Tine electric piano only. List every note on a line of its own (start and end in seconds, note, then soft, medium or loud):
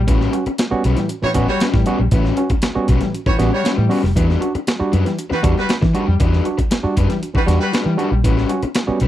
0.07 0.18 A2 medium
0.07 0.18 E3 medium
0.32 0.44 C#4 medium
0.32 0.44 F#4 medium
0.71 0.82 G3 medium
0.71 0.82 B3 medium
0.71 0.83 C#4 medium
0.71 0.83 F#4 medium
0.96 1.08 A2 medium
0.96 1.08 E3 medium
1.09 1.15 C#4 soft
1.09 1.14 F#4 soft
1.22 1.34 A2 medium
1.22 1.33 E3 medium
1.34 1.46 G3 medium
1.34 1.46 B3 medium
1.34 1.46 C#4 medium
1.34 1.46 F#4 medium
1.60 1.66 C#4 soft
1.60 1.66 F#4 soft
1.73 1.85 A2 medium
1.73 1.85 E3 medium
1.86 1.98 G3 medium
1.86 1.98 B3 medium
1.86 1.98 C#4 medium
1.86 1.98 F#4 medium
2.12 2.23 A2 medium
2.12 2.23 E3 medium
2.37 2.48 C#4 medium
2.37 2.49 F#4 medium
2.75 2.87 G3 medium
2.75 2.87 B3 medium
2.75 2.87 C#4 medium
2.75 2.87 F#4 medium
3.01 3.12 A2 medium
3.01 3.12 E3 medium
3.14 3.19 C#4 soft
3.14 3.19 F#4 soft
3.26 3.38 A2 medium
3.26 3.38 E3 medium
3.38 3.50 G3 medium
3.38 3.50 B3 medium
3.38 3.50 C#4 medium
3.38 3.50 F#4 medium
3.64 3.70 C#4 soft
3.64 3.70 F#4 soft
3.77 3.89 A2 medium
3.77 3.89 E3 medium
3.89 4.01 G3 medium
3.89 4.01 B3 medium
3.89 4.01 C#4 medium
3.89 4.01 F#4 medium
4.16 4.27 E3 medium
4.40 4.52 D4 medium
4.40 4.53 F#4 medium
4.80 4.91 G3 medium
4.80 4.91 D4 medium
4.80 4.91 F#4 medium
5.05 5.16 E3 medium
5.18 5.23 D4 soft
5.18 5.23 F#4 soft
5.30 5.42 E3 medium
5.43 5.55 G3 medium
5.43 5.55 D4 medium
5.43 5.55 F#4 medium
5.69 5.74 D4 soft
5.69 5.74 F#4 soft
5.81 5.93 E3 medium
5.94 6.06 G3 medium
5.94 6.06 D4 medium
5.94 6.06 F#4 medium
6.20 6.31 E3 medium
6.45 6.56 D4 medium
6.45 6.57 F#4 medium
6.83 6.95 G3 medium
6.83 6.95 D4 medium
6.83 6.95 F#4 medium
7.09 7.21 E3 medium
7.22 7.27 D4 soft
7.22 7.27 F#4 soft
7.34 7.46 E3 medium
7.46 7.58 G3 medium
7.46 7.58 D4 medium
7.46 7.59 F#4 medium
7.73 7.78 D4 soft
7.73 7.78 F#4 soft
7.85 7.97 E3 medium
7.97 8.09 G3 medium
7.97 8.09 D4 medium
7.97 8.10 F#4 medium
8.24 8.35 A2 medium
8.24 8.35 E3 medium
8.49 8.61 C#4 medium
8.49 8.61 F#4 medium
8.87 8.99 G3 medium
8.87 8.99 B3 medium
8.87 8.99 C#4 medium
8.87 8.99 F#4 medium